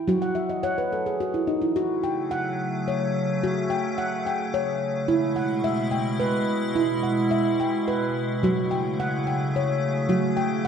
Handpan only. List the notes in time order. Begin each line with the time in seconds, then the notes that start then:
Already playing: G5
0.08 F#3 F#4
0.22 F#5
0.35 E5
0.49 D#5
0.63 C#5 F#5
0.78 B4
0.92 A4
1.06 G#4
1.20 F#4
1.34 E4
1.47 D#4
1.62 E4
1.76 F#4
2.04 G5
2.31 F#5
2.88 C#5
3.43 F#4
3.70 G5
3.98 F#5
4.26 G5
4.54 C#5
5.08 E4
5.36 F#5
5.64 E5
5.91 G5
6.20 B4
6.75 E4
7.03 F#5
7.31 E5
7.60 G5
7.88 B4
8.43 F#3 F#4
8.71 G5
9.00 F#5
9.27 G5
9.56 C#5
10.09 F#3 F#4
10.37 G5